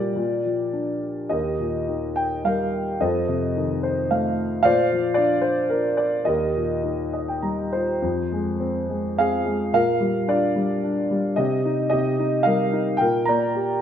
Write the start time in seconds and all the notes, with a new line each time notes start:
Already playing: A#2 G3 G4 A#4 D5
0.16 A#2
0.45 F3
0.73 D4
1.29 D#2 G4 A#4 D#5
1.60 A#2
1.88 D#3
2.16 G5
2.44 G3 A#4 F5
3.00 F2 A4 C5 D#5
3.28 C3
3.56 D#3
3.83 C5
4.11 A3 F5
4.63 A#2 C5 D5 F5
4.92 F3
5.14 D4 D5
5.41 C5
5.69 F4 A#4
5.97 D5
6.25 D#2 G4 A#4 D#5
6.56 A#2
6.84 D#3
7.13 D#5
7.28 G5
7.42 G3 A#5
7.73 F4 C5
8.02 F2
8.32 G#3
8.60 C4
8.89 G#3
9.17 C4 G#4 F5
9.45 G#3
9.73 A#2 A#4 F5
10.00 G3
10.28 D4 F4 D5
10.56 G3
10.84 D4
11.11 G3
11.36 C3 G4 D#5
11.65 D#4
11.90 C3 G4 D#5
12.19 D#4
12.43 G3 A#4 F5
12.72 D#4
12.97 A#2 A#4 G5
13.25 A#3 D5 A#5
13.56 G4